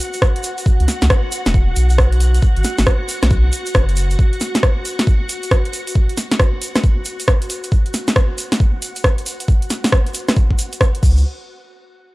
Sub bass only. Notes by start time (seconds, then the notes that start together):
0.80 C#2
1.02 C#2
1.46 E1
1.76 B1
2.56 G#1
2.79 G#1
3.23 B1
3.75 F#1
11.03 C#2